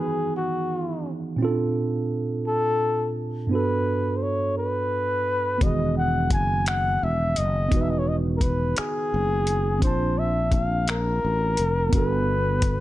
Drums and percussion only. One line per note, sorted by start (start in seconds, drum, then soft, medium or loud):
5.61 kick loud
5.61 closed hi-hat medium
6.31 kick medium
6.31 closed hi-hat medium
6.66 finger snap loud
6.66 closed hi-hat medium
7.36 closed hi-hat medium
7.72 kick loud
7.72 closed hi-hat medium
8.41 kick medium
8.41 closed hi-hat medium
8.77 finger snap loud
8.77 closed hi-hat medium
9.47 closed hi-hat medium
9.82 kick loud
9.82 closed hi-hat medium
10.52 kick medium
10.52 closed hi-hat medium
10.88 finger snap loud
10.88 closed hi-hat medium
11.57 closed hi-hat medium
11.93 kick loud
11.93 closed hi-hat medium
12.62 kick medium
12.62 closed hi-hat medium